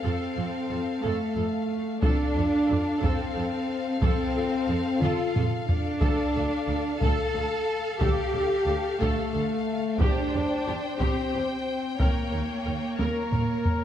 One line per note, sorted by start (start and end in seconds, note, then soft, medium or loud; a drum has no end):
0.00 0.12 F2 medium
0.00 1.01 C4 medium
0.00 1.99 A4 soft
0.00 0.34 A4 soft
0.00 1.99 F5 soft
0.04 1.01 C4 medium
0.37 0.45 F2 soft
0.37 0.45 A4 soft
0.69 0.80 F2 soft
0.69 0.77 A4 soft
1.02 1.12 F2 medium
1.02 2.03 A3 medium
1.02 2.04 A3 soft
1.02 1.33 A4 soft
1.35 1.44 F2 soft
1.35 1.43 A4 soft
2.01 2.11 F2 medium
2.01 3.02 D4 medium
2.01 3.01 D4 medium
2.01 2.33 A4 medium
2.01 5.98 A4 soft
2.01 5.99 F5 medium
2.01 taiko medium
2.34 2.44 F2 soft
2.34 2.42 A4 soft
2.67 2.78 F2 soft
2.67 2.75 A4 soft
3.01 3.11 F2 medium
3.01 3.99 C4 medium
3.01 4.01 C4 medium
3.01 3.33 A4 medium
3.01 taiko medium
3.35 3.44 F2 soft
3.35 3.43 A4 medium
4.00 4.10 F2 medium
4.00 4.99 C4 medium
4.00 5.00 C4 medium
4.00 4.33 A4 medium
4.00 taiko medium
4.36 4.44 F2 soft
4.36 4.44 A4 medium
4.68 4.76 F2 soft
4.68 4.78 A4 soft
5.01 5.11 F2 medium
5.01 5.35 F4 medium
5.01 5.33 A4 medium
5.01 taiko mid medium
5.36 5.44 F2 medium
5.36 5.44 A4 soft
5.36 taiko low-mid medium
5.67 6.97 D4 medium
5.67 6.98 D4 medium
5.67 taiko low medium
6.01 6.10 D2 medium
6.01 6.32 A4 medium
6.01 9.97 A4 medium
6.01 9.97 F5 medium
6.01 taiko medium
6.34 6.44 D2 medium
6.34 6.42 A4 soft
6.68 6.76 D2 medium
6.68 6.76 A4 medium
7.00 7.10 D2 medium
7.00 7.98 A4 medium
7.00 7.33 A4 medium
7.00 8.02 A4 medium
7.00 taiko medium
7.34 7.42 D2 soft
7.34 7.43 A4 medium
7.98 8.09 D2 medium
7.98 8.97 G4 medium
7.98 8.99 G4 medium
7.98 8.31 A4 medium
7.98 taiko medium
8.33 8.42 D2 soft
8.33 8.41 A4 soft
8.67 8.75 D2 soft
8.67 8.75 A4 soft
9.00 9.09 D2 medium
9.00 9.99 A3 medium
9.00 10.01 A3 medium
9.00 9.31 A4 medium
9.00 taiko medium
9.33 9.42 D2 soft
9.33 9.41 A4 soft
9.98 10.07 E2 medium
9.98 10.98 D4 medium
9.98 11.01 D4 medium
9.98 10.31 G4 medium
9.98 11.96 C5 soft
9.98 12.98 G5 medium
9.98 taiko medium
10.33 10.42 E2 soft
10.33 10.41 G4 soft
10.67 10.76 E2 soft
10.67 10.75 G4 soft
10.98 11.08 E2 medium
10.98 11.98 C4 soft
10.98 12.00 C4 medium
10.98 11.30 G4 soft
10.98 taiko medium
11.33 11.42 E2 soft
11.33 11.41 G4 soft
11.98 12.07 D#2 soft
11.98 12.97 A#3 medium
11.98 13.66 A#3 soft
11.98 12.30 A#4 soft
11.98 13.76 C#5 soft
11.98 taiko medium
12.32 12.41 D#2 soft
12.32 12.40 A#4 soft
12.66 12.74 D#2 soft
12.66 12.74 A#4 soft
12.98 13.08 D#2 soft
12.98 13.84 A#3 medium
12.98 13.30 A#4 soft
12.98 13.84 A#4 soft
12.98 taiko high medium
13.32 13.41 D#2 soft
13.32 13.40 A#4 soft
13.32 taiko low-mid medium
13.65 taiko low medium